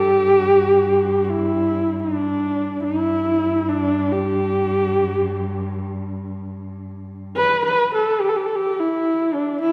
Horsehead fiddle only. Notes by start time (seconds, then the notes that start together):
Already playing: G4
1.24 G4
1.31 E4
2.00 D4
2.83 E4
3.69 D4
4.12 G4
7.36 B4
7.65 B4
7.95 A4
8.21 G4
8.29 A4
8.36 G4
8.46 A4
8.55 G4
8.80 E4
9.34 D4
9.62 E4